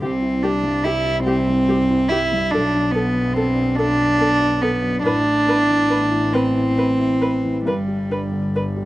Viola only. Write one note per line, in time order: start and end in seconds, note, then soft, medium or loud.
0.02 0.10 G4 medium
0.44 0.52 G4 medium
0.86 0.94 G4 medium
1.27 1.35 G4 medium
1.69 1.77 G4 medium
2.11 2.19 G4 medium
2.54 2.62 A4 medium
2.95 3.03 A4 medium
3.37 3.45 A4 medium
3.78 3.86 A4 medium
4.20 4.28 A4 medium
4.62 4.70 A4 medium
5.06 5.14 B4 medium
5.48 5.56 B4 medium
5.90 5.98 B4 medium
6.34 6.42 B4 medium
6.78 6.86 B4 medium
7.22 7.30 B4 medium
7.67 7.75 B4 medium
8.12 8.20 B4 medium
8.56 8.64 B4 medium